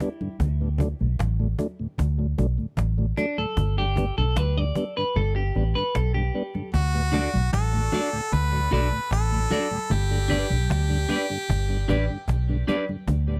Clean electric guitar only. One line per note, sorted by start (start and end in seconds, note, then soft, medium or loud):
0.00 0.36 E4 medium
3.17 3.36 D4 medium
3.38 3.78 A4 medium
3.78 4.17 G4 loud
4.18 4.37 A4 medium
4.37 4.58 B4 loud
4.58 4.97 D5 loud
4.97 5.16 B4 loud
5.16 5.35 A4 loud
5.36 5.77 G4 medium
5.75 5.95 B4 medium
5.95 6.14 A4 medium
6.14 6.69 G4 medium
7.12 7.28 D4 medium
7.12 7.29 F#4 medium
7.12 7.29 A4 medium
7.12 7.29 D5 medium
7.92 8.08 D4 medium
7.92 8.09 F#4 medium
7.92 8.09 A4 medium
7.92 8.09 D5 medium
8.71 8.87 D4 medium
8.71 8.87 F#4 medium
8.71 8.88 A4 medium
8.71 8.88 D5 medium
9.51 9.67 D4 medium
9.51 9.67 F#4 medium
9.51 9.67 A4 medium
9.51 9.67 D5 loud
10.28 10.45 D4 medium
10.28 10.46 G4 medium
10.28 10.46 B4 medium
10.28 10.46 D5 medium
11.09 11.25 D4 medium
11.09 11.25 G4 medium
11.09 11.25 B4 medium
11.09 11.26 D5 medium
11.88 12.04 D4 medium
11.88 12.04 G4 medium
11.88 12.05 B4 medium
11.88 12.05 D5 medium
12.67 12.84 D4 medium
12.67 12.84 G4 medium
12.67 12.84 B4 medium
12.67 12.84 D5 loud